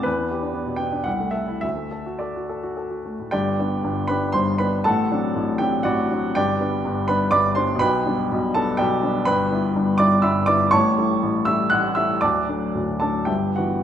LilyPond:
<<
  \new Staff \with { instrumentName = "Upright piano" } { \time 3/4 \key g \major \tempo 4 = 120 b'4. g''8 fis''8 e''8 | e''4 d''4 r4 | <g' d'' g''>4. <b' b''>8 <c'' c'''>8 <b' b''>8 | <a' fis'' a''>4. <g' g''>8 <fis' d'' fis''>4 |
<g' d'' g''>4. <b' b''>8 <d'' b'' d'''>8 <c'' c'''>8 | <b' g'' b''>4. <a' a''>8 <g' d'' g''>4 | \key e \dorian <b' g'' b''>4. <d'' d'''>8 <e'' b'' e'''>8 <d'' d'''>8 | <cis'' a'' cis'''>4. <e'' e'''>8 <fis'' fis'''>8 <e'' e'''>8 |
<d'' a'' d'''>4. <a' a''>8 <g' e'' g''>8 <fis' fis''>8 | }
  \new Staff \with { instrumentName = "Upright piano" } { \clef bass \time 3/4 \key g \major e,8 g'16 d'16 b16 b,16 b16 d'16 c,16 a16 a'16 e'16 | d,16 a16 a'16 fis'16 a'16 fis'16 a'16 fis'16 a'16 fis'16 a16 a,16 | <g,, g,>8 <b d' g'>8 <g,, g,>8 <b d' g'>8 <g,, g,>8 <b d' g'>8 | <a,, a,>8 <fis c' d'>8 <a,, a,>8 <fis c' d'>8 <a,, a,>8 <fis c' d'>8 |
<g,, g,>8 <g b d'>8 <g,, g,>8 <g b d'>8 <g,, g,>8 <g b d'>8 | <b,, b,>8 <g b d'>8 <b,, b,>8 <g b d'>8 <b,, b,>8 <g b d'>8 | \key e \dorian <g,, g,>8 <g b e'>8 <g,, g,>8 <g b e'>8 <g,, g,>8 <g b e'>8 | <a,, a,>8 <g a e'>8 <a,, a,>8 <g a e'>8 <a,, a,>8 <g a e'>8 |
<d,, d,>8 <fis a d'>8 <d,, d,>8 <fis a d'>8 <g,, g,>8 <e b e'>8 | }
>>